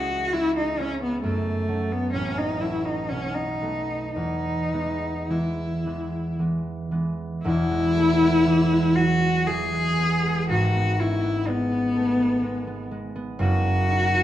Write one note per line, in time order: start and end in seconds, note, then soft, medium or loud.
0.00 1.26 C#2 medium
0.00 0.33 G#3 soft
0.00 0.34 C#4 soft
0.00 0.34 E4 soft
0.00 0.35 F#4 medium
0.33 0.79 G#3 soft
0.33 0.79 C#4 soft
0.33 0.56 E4 medium
0.33 0.79 E4 medium
0.57 0.80 D#4 medium
0.79 1.27 G#3 soft
0.79 1.01 C#4 medium
0.79 1.68 C#4 soft
0.79 1.27 E4 medium
1.02 1.22 B3 medium
1.23 2.18 F#2 medium
1.23 1.93 A3 medium
1.68 2.60 F#3 soft
1.68 2.60 A3 soft
1.68 2.61 C#4 soft
1.92 2.12 B3 medium
2.13 3.14 A1 medium
2.13 2.40 C#4 medium
2.38 2.62 D#4 medium
2.61 3.60 F#3 soft
2.61 3.61 A3 soft
2.61 3.14 C#4 soft
2.61 2.87 E4 medium
2.86 3.11 D#4 medium
3.09 4.20 B1 medium
3.09 3.36 C#4 medium
3.35 4.15 D#4 medium
3.62 4.21 F#3 soft
3.62 4.21 A3 soft
3.62 4.72 B3 soft
4.16 7.44 E2 medium
4.16 5.31 D#4 medium
4.73 5.29 E3 soft
4.73 5.29 G#3 soft
4.73 5.30 B3 soft
5.30 5.85 E3 soft
5.30 5.85 G#3 soft
5.30 5.86 B3 soft
5.30 6.38 E4 medium
5.86 6.38 E3 soft
5.86 6.38 G#3 soft
5.86 6.39 B3 soft
6.39 6.90 E3 soft
6.39 6.90 G#3 soft
6.39 6.91 B3 soft
6.91 7.48 E3 soft
6.91 7.70 G#3 soft
6.91 9.98 B3 soft
7.43 10.53 E1 medium
7.43 10.54 E2 medium
7.43 8.97 E4 medium
7.71 8.21 G#3 medium
7.96 8.39 A3 medium
8.22 8.70 G#3 medium
8.46 9.46 E3 medium
8.71 9.20 G#3 medium
8.96 9.39 F#3 soft
8.96 9.48 F#4 medium
9.21 9.72 G#3 medium
9.47 10.54 E3 medium
9.47 10.49 G#4 medium
9.73 10.24 G#3 soft
9.99 10.74 B3 medium
10.25 11.46 G#3 medium
10.49 13.44 G#1 medium
10.49 13.45 G#2 medium
10.49 11.02 F#4 medium
10.75 11.23 B3 medium
11.00 11.41 C#4 soft
11.00 11.49 E4 medium
11.24 11.70 B3 medium
11.47 12.41 G#3 medium
11.47 12.91 B3 medium
11.72 12.18 B3 medium
11.96 12.36 A3 soft
12.19 12.66 B3 medium
12.43 12.90 G#3 medium
12.67 13.14 B3 medium
12.91 13.44 G#3 medium
13.16 13.44 B3 medium
13.39 14.23 F#1 medium
13.39 14.23 F#2 medium
13.39 14.23 F#4 loud
13.65 14.13 C#4 medium
13.88 14.23 D#4 soft
14.14 14.23 C#4 medium